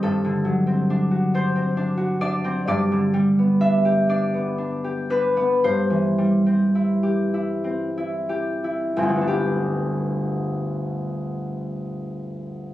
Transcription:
0.00 2.66 G2 medium
0.00 0.66 C4 soft
0.00 2.71 A4 medium
0.00 1.34 C5 medium
0.24 2.72 D3 soft
0.45 2.71 F#3 soft
0.67 1.54 C4 soft
0.90 1.33 D4 soft
1.11 1.96 F#4 soft
1.34 1.76 D4 soft
1.34 2.73 C5 medium
1.56 2.43 C4 soft
1.77 2.20 D4 soft
1.97 2.71 F#4 soft
2.21 3.60 D4 soft
2.21 2.67 D5 medium
2.44 2.71 C4 soft
2.67 5.63 G2 medium
2.67 4.08 D5 medium
2.92 5.68 D3 soft
3.14 6.17 G3 medium
3.39 4.33 B3 soft
3.61 4.08 D4 soft
3.61 4.43 E5 medium
3.85 4.83 G4 soft
4.09 4.57 D4 medium
4.09 5.67 D5 medium
4.34 5.36 B3 soft
4.58 5.09 D4 soft
4.84 7.02 G4 soft
5.10 5.67 D4 soft
5.10 5.67 B4 medium
5.37 5.68 B3 medium
5.64 9.33 G2 medium
5.64 9.33 C5 medium
5.90 9.33 E3 soft
6.18 9.07 G3 soft
6.46 7.63 C4 soft
6.75 7.33 E4 soft
7.03 8.28 G4 soft
7.34 7.96 E4 soft
7.64 8.96 C4 soft
7.97 8.63 E4 soft
8.29 9.26 G4 soft
8.64 9.33 E4 soft
8.97 12.74 G1 soft
8.97 9.33 C4 soft
9.03 12.74 D2 soft
9.09 12.65 G3 soft
9.16 12.59 B3 soft
9.21 12.65 D4 soft
9.28 12.71 G4 soft

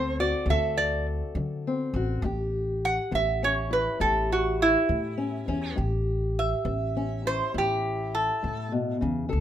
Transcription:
0.00 0.32 D2 medium
0.00 0.12 F#3 medium
0.00 1.65 C4 medium
0.00 0.50 A4 medium
0.00 0.18 C5 medium
0.20 1.95 F#4 medium
0.20 0.47 D5 medium
0.46 1.20 D2 medium
0.46 1.01 D3 medium
0.50 2.25 A4 medium
0.50 0.77 E5 medium
0.77 1.06 D5 medium
1.35 1.85 D3 medium
1.35 1.89 F#3 soft
1.67 2.22 C4 medium
1.94 2.19 A1 medium
1.94 2.21 F#4 medium
2.22 2.97 A1 medium
2.22 2.77 A2 medium
2.22 4.00 G4 medium
2.85 3.13 F#5 medium
3.11 3.86 A1 medium
3.11 3.65 E3 medium
3.11 3.42 E5 medium
3.43 5.16 C#4 medium
3.43 3.72 C#5 medium
3.71 5.74 E4 medium
3.71 4.01 B4 medium
4.00 4.75 A1 medium
4.00 4.53 A2 medium
4.00 5.74 G4 medium
4.00 4.30 A4 medium
4.32 4.60 F#4 medium
4.62 5.75 E4 loud
4.89 5.38 A2 medium
4.89 5.42 E3 medium
5.18 5.47 C#4 medium
5.48 5.73 E2 medium
5.48 5.74 C#4 medium
5.76 6.52 A1 medium
5.76 6.30 A2 medium
5.76 9.28 G4 medium
6.39 7.24 E5 medium
6.65 7.40 A1 medium
6.65 7.19 E3 medium
6.97 9.29 C#4 medium
7.25 7.53 E4 soft
7.25 7.55 C5 medium
7.54 8.29 A1 medium
7.54 8.08 A2 medium
7.54 9.28 E4 medium
7.54 8.14 G4 medium
8.15 8.71 A4 medium
8.43 8.72 A2 soft
8.43 8.93 A2 medium
8.72 9.00 B2 medium
9.01 9.27 E2 medium
9.01 9.28 C#3 medium
9.29 9.40 D2 medium
9.29 9.40 D3 medium
9.29 9.40 A4 medium

